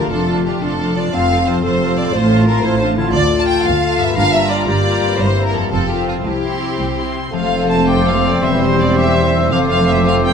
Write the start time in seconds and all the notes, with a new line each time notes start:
Already playing: F3 A3 D4 G4 A#4 D5
0.01 F4
0.06 D4 A4 A5
0.10 F1 F2 D4 F4 A4
0.25 D4 F4 A5
0.44 D4 F4 G4 A5
0.60 F1 F2 D4 F4 A4 A5
0.78 D4 F4 A5
0.94 F3 D4 F4 D5 A5
0.99 C4
1.04 F4
1.08 A4 A5
1.12 F1 F2 A3 C4 F4 F5
1.29 C4 F4 A5
1.46 C4 F4 C5 A5
1.63 F1 F2 C4 F4 A4 C5 A5
1.80 C4 F4 A5
1.95 A2 C4 F4 D5 A5
2.00 C4
2.04 F4
2.09 A4
2.13 A1 A2 A3 F4 C5 A5
2.30 A3 F4 A5
2.47 A3 F4 A#4 A5
2.63 A1 A2 A3 E4 F4 C5 A5
2.80 A3 D4 F4 A5
2.96 D3 A3 E4 F4 A5
3.00 A3
3.04 F4
3.09 A4
3.13 D2 A3 F4 D5
3.31 A3 F4 A5
3.40 A5
3.48 G5
3.64 D2 A3 F4 F5
3.82 A3 F4 A5
3.98 G2 E5
4.02 A#3
4.07 F4
4.11 G4
4.16 G1 G2 G3 A#3 D4 F4 F5 A#5
4.32 G3 F4 E5 A#5
4.50 D5
4.65 G1 G2 A#3 F4 G4 D5
4.84 G3 F4 A#5
5.01 G2
5.05 C4
5.10 E4
5.14 A#4
5.18 G1 G2 A#3 E4 C5
5.36 G3 E4 A#5
5.46 A#4
5.53 F2 A4
5.57 C4
5.62 F4
5.66 C4 A4
5.70 F1 F2 C4 F4 A4 A5
5.89 C4 F4 G4 A5
6.07 C3 F4
6.11 C4
6.16 E4
6.20 C5
6.24 C2 C4 E4 G4
6.43 C4 E4 C6
6.78 C2
6.96 C4 E4 C6
7.32 F1 F2 F3 A3 C4 F4 A4 C5 F5
7.51 C4
7.69 C5 A5
7.88 D5 G5 D6
8.06 C5 F5
8.25 C4 D5
8.42 E1 E2 E3 G3 G4 C5 E5 C6
8.61 C4 C5
8.79 C5 D5
8.97 D5 E5 D6
9.15 C5 C6
9.33 C4 E6
9.51 F1 F2 F3 A3 C4 F4 A4 C5 F5 D6
9.70 C4 F5
9.89 C5 E5
10.06 D5 F5
10.25 C5 G5